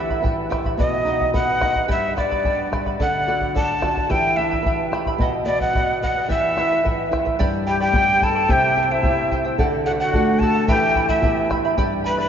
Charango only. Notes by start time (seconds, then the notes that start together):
Already playing: E4
0.10 E4 E5 B5
0.24 E4 E5 G5 B5
0.50 E4 E5 G5 B5
0.66 E4 E5 B5
0.79 B4 D#5 F#5
1.06 B4 D#5 F#5
1.20 D#5 F#5
1.33 B4 D#5 F#5
1.62 B4 D#5 F#5
1.75 D#5 F#5
1.88 G4 B4 D5 G5 B5
2.16 B4 D5 G5 B5
2.31 B4 D5 B5
2.45 B4 D5 G5 B5
2.73 B4 D5 G5 B5
2.86 B4 D5 B5
3.00 A4 D5 F#5
3.28 A4 D5 F#5
3.41 D5 F#5
3.54 A4 D5 F#5
3.81 A4 D5 F#5
3.95 D5 F#5
4.09 E4 G4 E5 G5 B5
4.37 E4 E5 G5 B5
4.51 E4 E5 B5
4.66 E4 E5 G5 B5
4.93 E4 E5 G5 B5
5.07 E4 E5 B5
5.20 B4 D#5 F#5
5.47 B4 D#5 F#5
5.62 D#5 F#5
5.75 B4 D#5 F#5
6.03 B4 D#5 F#5
6.16 D#5 F#5
6.29 E4 G4 B4 E5 G5
6.57 E4 B4 E5 G5
6.71 E4 B4 G5
6.84 E4 B4 E5 G5
7.11 E4 B4 E5 G5
7.25 E4 B4 G5
7.39 G4 B4 D5 G5 B5
7.67 B4 D5 G5 B5
7.80 B4 D5 B5
7.95 B4 D5 G5 B5
8.22 B4 D5 G5 B5
8.36 B4 D5 B5
8.49 E4 G4 C5 E5 G5
8.76 E4 C5 E5 G5
8.91 E4 C5 G5
9.04 E4 C5 E5 G5
9.31 E4 C5 E5 G5
9.44 E4 C5 G5
9.59 A4 D5 F#5
9.86 A4 D5 F#5
10.00 D5 F#5
10.14 A4 D5 F#5
10.42 A4 D5 F#5
10.55 D5 F#5
10.68 E4 B4 E5 G5 B5
10.95 E4 E5 G5 B5
11.09 E4 E5 B5
11.22 E4 E5 G5 B5
11.50 E4 E5 G5 B5
11.65 E4 E5 B5
11.77 G4 B4 D5 G5 B5
12.04 B4 D5 G5 B5
12.17 B4 D5 B5